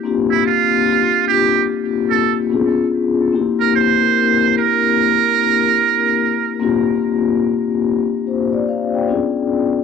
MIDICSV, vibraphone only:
0, 0, Header, 1, 2, 480
1, 0, Start_track
1, 0, Tempo, 821918
1, 22, Time_signature, 4, 2, 24, 8
1, 5746, End_track
2, 0, Start_track
2, 0, Title_t, "Vibraphone"
2, 0, Program_c, 0, 11
2, 0, Control_c, 0, 64, 127
2, 19, Note_on_c, 0, 58, 89
2, 25, Note_on_c, 0, 60, 93
2, 28, Control_c, 0, 64, 0
2, 29, Note_on_c, 0, 62, 93
2, 35, Note_on_c, 0, 65, 84
2, 39, Note_on_c, 0, 67, 103
2, 122, Control_c, 0, 64, 127
2, 617, Note_off_c, 0, 58, 0
2, 620, Note_off_c, 0, 60, 0
2, 621, Note_off_c, 0, 62, 0
2, 625, Note_off_c, 0, 65, 0
2, 627, Note_off_c, 0, 67, 0
2, 748, Note_on_c, 0, 58, 58
2, 753, Note_on_c, 0, 60, 62
2, 757, Note_on_c, 0, 62, 74
2, 763, Note_on_c, 0, 65, 68
2, 768, Note_on_c, 0, 67, 82
2, 1152, Note_off_c, 0, 58, 0
2, 1155, Note_off_c, 0, 60, 0
2, 1157, Note_off_c, 0, 62, 0
2, 1160, Note_off_c, 0, 65, 0
2, 1162, Note_off_c, 0, 67, 0
2, 1225, Note_on_c, 0, 58, 76
2, 1229, Note_on_c, 0, 60, 76
2, 1234, Note_on_c, 0, 62, 73
2, 1241, Note_on_c, 0, 65, 73
2, 1245, Note_on_c, 0, 67, 79
2, 1459, Note_on_c, 0, 59, 96
2, 1462, Note_off_c, 0, 62, 0
2, 1462, Note_on_c, 0, 61, 86
2, 1463, Note_off_c, 0, 58, 0
2, 1466, Note_off_c, 0, 60, 0
2, 1467, Note_off_c, 0, 65, 0
2, 1469, Note_on_c, 0, 62, 82
2, 1470, Control_c, 0, 64, 0
2, 1473, Note_off_c, 0, 67, 0
2, 1474, Note_on_c, 0, 65, 94
2, 1479, Note_on_c, 0, 68, 92
2, 1571, Control_c, 0, 64, 127
2, 1870, Note_off_c, 0, 59, 0
2, 1871, Note_off_c, 0, 61, 0
2, 1875, Note_off_c, 0, 62, 0
2, 1877, Note_off_c, 0, 65, 0
2, 1880, Note_off_c, 0, 68, 0
2, 1938, Note_on_c, 0, 58, 97
2, 1943, Note_on_c, 0, 60, 87
2, 1948, Note_on_c, 0, 62, 84
2, 1950, Control_c, 0, 64, 0
2, 1954, Note_on_c, 0, 64, 96
2, 1959, Note_on_c, 0, 67, 111
2, 2050, Control_c, 0, 64, 127
2, 2238, Note_off_c, 0, 58, 0
2, 2241, Note_off_c, 0, 60, 0
2, 2243, Note_off_c, 0, 62, 0
2, 2246, Note_off_c, 0, 64, 0
2, 2248, Note_off_c, 0, 67, 0
2, 2330, Note_on_c, 0, 58, 77
2, 2334, Note_on_c, 0, 60, 74
2, 2339, Note_on_c, 0, 62, 69
2, 2344, Note_on_c, 0, 64, 69
2, 2348, Note_on_c, 0, 70, 86
2, 3083, Note_off_c, 0, 58, 0
2, 3085, Note_off_c, 0, 60, 0
2, 3088, Note_off_c, 0, 62, 0
2, 3090, Note_off_c, 0, 64, 0
2, 3092, Note_off_c, 0, 70, 0
2, 3853, Note_on_c, 0, 58, 111
2, 3859, Note_on_c, 0, 60, 100
2, 3864, Note_on_c, 0, 62, 100
2, 3869, Note_on_c, 0, 65, 113
2, 3870, Control_c, 0, 64, 0
2, 3874, Note_on_c, 0, 67, 119
2, 3962, Control_c, 0, 64, 127
2, 4454, Note_off_c, 0, 58, 0
2, 4457, Note_off_c, 0, 60, 0
2, 4459, Note_off_c, 0, 62, 0
2, 4462, Note_off_c, 0, 65, 0
2, 4464, Note_off_c, 0, 67, 0
2, 4830, Note_on_c, 0, 72, 67
2, 4831, Note_on_c, 0, 67, 54
2, 4970, Note_off_c, 0, 72, 0
2, 4971, Note_off_c, 0, 67, 0
2, 4982, Note_on_c, 0, 74, 69
2, 4986, Note_on_c, 0, 67, 58
2, 5062, Note_off_c, 0, 74, 0
2, 5064, Note_off_c, 0, 67, 0
2, 5070, Note_on_c, 0, 77, 73
2, 5073, Note_on_c, 0, 72, 60
2, 5210, Note_off_c, 0, 77, 0
2, 5212, Note_off_c, 0, 72, 0
2, 5223, Note_on_c, 0, 79, 65
2, 5227, Note_on_c, 0, 74, 54
2, 5301, Note_on_c, 0, 59, 87
2, 5307, Note_on_c, 0, 61, 83
2, 5309, Control_c, 0, 64, 0
2, 5312, Note_on_c, 0, 62, 84
2, 5316, Note_on_c, 0, 65, 79
2, 5323, Note_on_c, 0, 68, 90
2, 5427, Control_c, 0, 64, 127
2, 5447, Note_off_c, 0, 79, 0
2, 5448, Note_off_c, 0, 74, 0
2, 5711, Note_off_c, 0, 59, 0
2, 5714, Note_off_c, 0, 61, 0
2, 5716, Note_off_c, 0, 62, 0
2, 5718, Note_off_c, 0, 65, 0
2, 5722, Note_off_c, 0, 68, 0
2, 5746, End_track
0, 0, End_of_file